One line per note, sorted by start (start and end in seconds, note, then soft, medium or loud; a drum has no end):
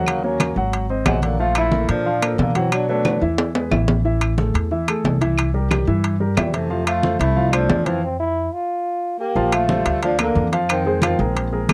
0.00 0.51 D#2 medium
0.00 0.17 F#3 medium
0.00 0.18 F#4 medium
0.00 0.18 F#5 medium
0.06 0.25 C#3 medium
0.06 0.25 A#3 medium
0.06 high conga soft
0.06 high timbale medium
0.06 claves medium
0.23 0.57 F#3 medium
0.23 0.37 A#3 medium
0.23 0.57 C#4 medium
0.23 0.38 A#4 medium
0.23 0.38 C#5 medium
0.23 high conga soft
0.40 0.54 A#3 medium
0.40 0.54 A#4 medium
0.40 0.54 C#5 medium
0.40 high conga medium
0.40 high timbale medium
0.40 low timbale medium
0.40 claves medium
0.56 1.03 G#1 medium
0.56 0.84 F#3 medium
0.56 0.84 F#4 medium
0.56 0.84 F#5 medium
0.56 high conga soft
0.73 high conga soft
0.73 high timbale medium
0.89 1.03 C4 medium
0.89 1.04 C5 medium
0.89 1.04 D#5 medium
0.89 high conga soft
1.06 1.84 A#1 medium
1.06 1.22 C3 medium
1.06 1.34 F#3 medium
1.06 1.22 G#3 medium
1.06 1.34 F#4 medium
1.06 1.34 F#5 medium
1.06 high conga medium
1.06 high timbale medium
1.06 low timbale medium
1.06 claves medium
1.22 1.39 D3 medium
1.22 1.39 A#3 medium
1.22 high conga medium
1.22 high timbale medium
1.39 1.67 F3 medium
1.39 1.55 A3 medium
1.39 1.67 F4 medium
1.39 1.56 F4 loud
1.39 1.67 F5 medium
1.39 high conga soft
1.55 1.87 A3 medium
1.55 1.88 E4 loud
1.55 high conga soft
1.55 high timbale medium
1.55 claves medium
1.72 2.00 A#3 medium
1.72 2.00 A4 medium
1.72 2.00 A#4 medium
1.72 high conga medium
1.72 low timbale medium
1.89 2.35 A#2 medium
1.89 2.35 F3 medium
1.89 2.36 D4 medium
1.89 high timbale medium
2.05 2.19 F3 medium
2.05 2.19 F4 medium
2.05 2.20 F5 medium
2.05 high conga soft
2.22 2.49 A#3 medium
2.22 2.50 A4 medium
2.22 2.50 A#4 medium
2.22 high conga soft
2.22 high timbale medium
2.22 claves medium
2.38 3.16 B2 medium
2.38 2.55 D3 medium
2.38 2.56 A#3 medium
2.38 high conga medium
2.38 low timbale medium
2.55 2.71 E3 medium
2.55 2.83 F#3 medium
2.55 2.72 C4 medium
2.55 2.83 F#4 medium
2.55 2.83 F#5 medium
2.55 high conga medium
2.55 high timbale medium
2.72 2.88 F#3 medium
2.72 2.89 D4 medium
2.72 high conga soft
2.72 high timbale medium
2.72 claves medium
2.89 3.20 F#3 medium
2.89 3.03 A3 medium
2.89 3.21 D4 medium
2.89 3.03 A4 medium
2.89 3.03 B4 medium
2.89 high conga soft
3.05 3.19 A3 medium
3.05 3.19 A4 medium
3.05 3.19 B4 medium
3.05 high conga medium
3.05 high timbale medium
3.05 claves medium
3.21 3.68 E2 medium
3.21 3.49 E3 medium
3.21 3.49 E4 medium
3.21 3.49 E5 medium
3.21 high conga soft
3.38 high conga soft
3.38 low timbale medium
3.55 3.69 G#3 medium
3.55 3.69 G#4 medium
3.55 3.69 B4 medium
3.55 high conga soft
3.55 low timbale medium
3.71 4.49 A1 medium
3.71 3.99 E3 medium
3.71 3.99 E4 medium
3.71 3.99 E5 medium
3.71 high conga medium
3.71 low timbale medium
3.71 claves medium
3.88 high conga medium
3.88 low timbale medium
4.05 4.32 E3 medium
4.05 4.32 E4 medium
4.05 4.32 E5 medium
4.05 high conga soft
4.21 high conga soft
4.21 high timbale medium
4.21 claves medium
4.38 4.65 A3 medium
4.38 4.65 G#4 medium
4.38 4.65 A4 medium
4.38 high conga medium
4.38 low timbale medium
4.54 5.01 E2 medium
4.54 high timbale medium
4.71 4.85 E3 medium
4.71 4.85 E4 medium
4.71 4.85 E5 medium
4.71 high conga soft
4.88 5.15 A3 medium
4.88 5.15 G#4 medium
4.88 5.15 A4 medium
4.88 high conga soft
4.88 high timbale medium
4.88 claves medium
5.04 5.82 C2 medium
5.04 high conga medium
5.04 low timbale medium
5.21 5.48 E3 medium
5.21 5.48 E4 medium
5.21 5.49 E5 medium
5.21 high conga medium
5.21 high timbale medium
5.38 high conga soft
5.38 high timbale medium
5.38 claves medium
5.54 5.68 G3 medium
5.54 5.68 G4 medium
5.54 5.68 A#4 medium
5.54 high conga soft
5.71 5.84 G3 medium
5.71 5.85 G4 medium
5.71 5.85 A#4 medium
5.71 high conga loud
5.71 high timbale medium
5.71 low timbale medium
5.71 claves medium
5.87 6.34 G2 medium
5.87 6.15 E3 medium
5.87 6.15 E4 medium
5.87 6.15 E5 medium
5.87 high conga soft
6.04 high conga soft
6.04 high timbale medium
6.20 6.34 G3 medium
6.20 6.34 G4 medium
6.20 6.34 A#4 medium
6.20 high conga soft
6.37 7.14 F2 medium
6.37 6.54 A#2 medium
6.37 6.64 E3 medium
6.37 6.56 G3 medium
6.37 6.64 E4 medium
6.37 6.65 E5 medium
6.37 high conga medium
6.37 high timbale medium
6.37 low timbale medium
6.37 claves medium
6.53 6.86 C3 medium
6.53 6.87 A3 medium
6.53 high conga medium
6.53 high timbale medium
6.70 6.97 F3 medium
6.70 6.98 F4 medium
6.70 6.98 F5 medium
6.70 high conga soft
6.87 7.18 A3 medium
6.87 7.18 F4 loud
6.87 high conga soft
6.87 high timbale medium
6.87 claves medium
7.03 7.30 A3 medium
7.03 7.31 A4 medium
7.03 7.31 C5 medium
7.03 high conga medium
7.03 low timbale medium
7.19 7.66 C2 loud
7.19 7.54 A3 medium
7.19 7.55 E4 medium
7.19 high timbale medium
7.36 7.50 F3 medium
7.36 7.50 F4 medium
7.36 7.50 F5 medium
7.36 high conga soft
7.52 7.88 F3 medium
7.52 7.80 A3 medium
7.52 7.88 D4 medium
7.52 7.80 A4 medium
7.52 7.81 C5 medium
7.52 high conga soft
7.52 high timbale medium
7.52 claves medium
7.69 8.47 F2 medium
7.69 high conga medium
7.69 low timbale medium
7.86 8.03 E3 medium
7.86 8.00 F3 medium
7.86 8.03 C4 medium
7.86 8.00 F4 medium
7.86 8.00 F5 medium
7.86 high conga medium
7.86 high timbale medium
8.04 8.19 C4 medium
8.20 8.55 E4 loud
8.53 9.20 F4 medium
9.20 9.55 A#3 medium
9.20 9.56 G4 medium
9.36 9.82 A#1 medium
9.36 9.63 F3 medium
9.36 9.64 F4 medium
9.36 9.64 F5 medium
9.36 high conga soft
9.52 10.03 A3 medium
9.52 10.03 F4 loud
9.52 high conga soft
9.52 high timbale medium
9.52 claves medium
9.69 9.97 G3 medium
9.69 9.97 A4 medium
9.69 9.97 C5 medium
9.69 high conga medium
9.85 10.32 D2 medium
9.85 high conga soft
9.85 high timbale medium
10.02 10.16 F3 medium
10.02 10.18 F3 medium
10.02 10.19 D4 medium
10.02 10.16 F4 medium
10.02 10.17 F5 medium
10.02 high conga soft
10.02 high timbale medium
10.19 10.51 D3 medium
10.19 10.46 A#3 medium
10.19 10.51 A#3 medium
10.19 10.46 A4 medium
10.19 10.47 A#4 medium
10.19 high conga soft
10.19 high timbale loud
10.19 claves medium
10.35 11.13 F2 medium
10.35 high conga medium
10.52 10.80 F3 medium
10.52 10.80 F4 medium
10.52 10.80 F5 medium
10.52 high timbale medium
10.69 11.01 D#3 medium
10.69 11.01 C4 medium
10.69 high conga soft
10.69 high timbale medium
10.69 claves medium
10.85 11.00 G#3 medium
10.85 11.00 G#4 medium
10.85 11.00 C5 medium
10.85 high conga soft
11.02 11.34 D#3 medium
11.02 11.16 F3 medium
11.02 11.65 C4 medium
11.02 11.16 F4 medium
11.02 11.17 F5 medium
11.02 high conga loud
11.02 high timbale medium
11.02 claves medium
11.19 11.65 A#1 medium
11.19 11.46 G#3 medium
11.19 11.47 G#4 medium
11.19 11.47 A#4 medium
11.19 high conga soft
11.35 high conga soft
11.35 high timbale medium
11.52 11.73 G#3 medium
11.52 11.73 G#4 medium
11.52 11.73 A#4 medium
11.52 high conga soft
11.69 11.73 D#2 medium
11.69 high conga medium
11.69 high timbale medium
11.69 low timbale medium
11.69 claves medium